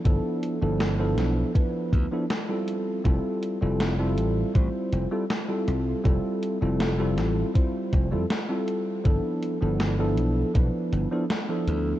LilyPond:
<<
  \new Staff \with { instrumentName = "Tine electric piano" } { \time 4/4 \key f \lydian \tempo 4 = 80 <f b d' e' a'>8. <f b d' e' a'>8 <f b d' e' a'>8. <f b d' e' b'>8. <f b d' e' a'>16 r16 <g c' e' f' a'>8. | <g c' e' f' a'>8. <g c' e' f' a'>8 <g c' e' f' a'>8. <g c' e' f' c''>8. <g c' e' f' a'>16 r16 <g c' e' f' a'>8. | <g c' e' f' a'>8. <g c' e' f' a'>8 <g c' e' f' a'>8. <g c' e' f' c''>8. <g c' e' f' a'>16 r16 <g c' e' f' a'>8. | <f b d' e' a'>8. <f b d' e' a'>8 <f b d' e' a'>8. <f b d' e' b'>8. <f b d' e' a'>16 r16 <f b d' e' a'>8. | }
  \new Staff \with { instrumentName = "Slap bass" } { \clef bass \time 4/4 \key f \lydian g,,16 r8 g,,8. b,,16 r8. d,16 r4 r16 | f,,16 r8 f,,8. a,,16 r16 a,,16 r16 f,,16 r8. c,16 r16 | f,,16 r8 f,,8. a,,16 r8. f,,16 f,16 r4 | g,,16 r8 g,,8. b,,16 r16 b,,16 r16 g,,16 r8. d,16 r16 | }
  \new DrumStaff \with { instrumentName = "Drums" } \drummode { \time 4/4 <hh bd>8 hh8 <hh sn>8 <hh sn>8 <hh bd>8 <hh bd>8 <hh sn>8 hh8 | <hh bd>8 hh8 <hh sn>8 hh8 <hh bd>8 hh8 <hh sn>8 hh8 | <hh bd>8 hh8 <hh sn>8 <hh sn>8 <hh bd>8 <hh bd>8 <hh sn>8 hh8 | <hh bd>8 hh8 <hh sn>8 hh8 <hh bd>8 hh8 <hh sn>8 hh8 | }
>>